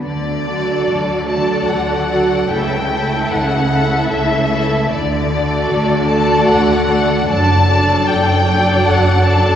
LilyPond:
<<
  \new Staff \with { instrumentName = "Violin section" } { \time 3/4 \key d \major \tempo 4 = 75 d''4. a''8 fis''4 | g''4 fis''4 e''4 | d''4. a''8 fis''4 | a''4 g''4 fis''8 a''8 | }
  \new Staff \with { instrumentName = "Violin section" } { \time 3/4 \key d \major r8 <a' d''>4 <a' d''>4 <a' d''>8 | <a' e''>8 <a' e''>4 <a' e''>4 <a' e''>8 | r8 <a' d''>4 <a' d''>4 <a' d''>8 | <a' d''>8 <a' d''>4 <a' d''>4 <a' d''>8 | }
  \new Staff \with { instrumentName = "Viola section" } { \time 3/4 \key d \major r8 <fis fis'>4 <fis fis'>4 <fis fis'>8 | <a e'>8 <a e'>4 <a e'>4 <a e'>8 | r8 <a fis'>4 <a fis'>4 <a fis'>8 | <fis d'>8 <fis d'>4 <fis d'>4 <fis d'>8 | }
  \new Staff \with { instrumentName = "Cello section" } { \clef bass \time 3/4 \key d \major d4 d4 d4 | cis4 cis4 cis4 | d4 d4 d4 | fis,4 fis,4 fis,4 | }
  \new Staff \with { instrumentName = "Double bass section" } { \clef bass \time 3/4 \key d \major d,4 d,4 d,4 | cis,4 cis,4 cis,4 | d,4 d,4 d,4 | fis,,4 fis,,4 fis,,4 | }
>>